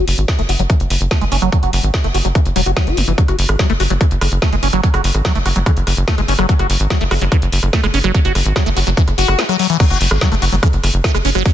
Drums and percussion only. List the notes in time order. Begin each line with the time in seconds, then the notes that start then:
0.08 open hi-hat
0.18 closed hi-hat
0.28 kick, snare, closed hi-hat
0.39 closed hi-hat
0.49 open hi-hat
0.59 closed hi-hat
0.70 kick, closed hi-hat
0.80 closed hi-hat
0.90 open hi-hat
1.01 closed hi-hat
1.11 kick, snare, closed hi-hat
1.21 closed hi-hat
1.32 open hi-hat
1.42 closed hi-hat
1.52 kick, closed hi-hat
1.63 closed hi-hat
1.73 open hi-hat
1.83 closed hi-hat
1.94 kick, snare, closed hi-hat
2.04 closed hi-hat
2.14 open hi-hat
2.25 closed hi-hat
2.35 kick, closed hi-hat
2.46 closed hi-hat
2.56 open hi-hat
2.66 closed hi-hat
2.77 kick, snare, closed hi-hat
2.87 closed hi-hat
2.97 open hi-hat
3.08 closed hi-hat
3.18 kick, closed hi-hat
3.28 cross-stick, closed hi-hat
3.39 open hi-hat
3.49 cross-stick, closed hi-hat
3.59 kick, snare, closed hi-hat
3.70 cross-stick, closed hi-hat
3.80 open hi-hat
3.90 closed hi-hat
4.01 kick, cross-stick, closed hi-hat
4.11 closed hi-hat
4.21 cross-stick, open hi-hat
4.32 closed hi-hat
4.42 kick, cross-stick, snare, closed hi-hat
4.52 closed hi-hat
4.63 open hi-hat
4.73 cross-stick, closed hi-hat
4.83 kick, closed hi-hat
4.94 cross-stick, closed hi-hat
5.04 open hi-hat
5.15 cross-stick, closed hi-hat
5.25 kick, snare, closed hi-hat
5.35 closed hi-hat
5.46 cross-stick, open hi-hat
5.56 closed hi-hat
5.66 kick, cross-stick, closed hi-hat
5.77 closed hi-hat
5.87 cross-stick, open hi-hat
5.97 closed hi-hat
6.08 kick, snare, closed hi-hat
6.18 cross-stick, closed hi-hat
6.28 open hi-hat
6.39 cross-stick, closed hi-hat
6.49 kick, closed hi-hat
6.59 cross-stick, closed hi-hat
6.70 open hi-hat
6.80 closed hi-hat
6.90 kick, cross-stick, snare, closed hi-hat
7.01 closed hi-hat
7.11 cross-stick, open hi-hat
7.21 closed hi-hat
7.32 kick, cross-stick, closed hi-hat
7.42 closed hi-hat
7.52 open hi-hat
7.63 cross-stick, closed hi-hat
7.73 kick, snare, closed hi-hat
7.83 cross-stick, closed hi-hat
7.94 open hi-hat
8.04 cross-stick, closed hi-hat
8.15 kick, closed hi-hat
8.25 closed hi-hat
8.35 cross-stick, open hi-hat
8.46 closed hi-hat
8.56 kick, cross-stick, snare, closed hi-hat
8.66 closed hi-hat
8.77 open hi-hat
8.87 closed hi-hat
8.97 kick, closed hi-hat
9.08 cross-stick, closed hi-hat
9.18 open hi-hat
9.28 cross-stick, closed hi-hat
9.39 snare, closed hi-hat
9.49 cross-stick, closed hi-hat
9.59 open hi-hat
9.70 closed hi-hat
9.80 kick, cross-stick, closed hi-hat, crash
9.90 closed hi-hat
10.01 open hi-hat
10.11 cross-stick
10.21 kick, snare, closed hi-hat
10.32 cross-stick, closed hi-hat
10.42 open hi-hat
10.52 closed hi-hat
10.63 kick, cross-stick, closed hi-hat
10.73 closed hi-hat
10.84 cross-stick, open hi-hat
10.94 closed hi-hat
11.04 kick, snare, closed hi-hat
11.15 cross-stick, closed hi-hat
11.25 open hi-hat
11.35 cross-stick, closed hi-hat
11.46 kick, closed hi-hat